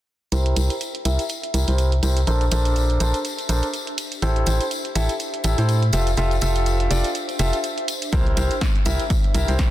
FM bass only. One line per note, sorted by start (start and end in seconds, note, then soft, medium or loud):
0.32 0.54 C2 medium
0.57 0.69 C2 medium
1.05 1.18 C2 medium
1.54 1.65 C2 medium
1.68 2.01 C2 medium
2.03 2.25 C2 medium
2.27 2.49 A#1 medium
2.52 2.98 A#1 medium
3.00 3.13 A#1 medium
3.49 3.62 A#1 medium
4.22 4.45 A1 medium
4.47 4.60 A1 medium
4.96 5.08 A1 medium
5.44 5.55 A1 medium
5.58 5.91 A2 medium
5.93 6.15 F1 medium
6.17 6.40 F1 medium
6.42 6.89 F1 medium
6.91 7.04 F1 medium
7.39 7.52 F1 medium
8.13 8.35 C2 medium
8.37 8.50 C2 medium
8.86 8.99 C2 medium
9.35 9.46 C2 medium
9.48 9.71 C2 medium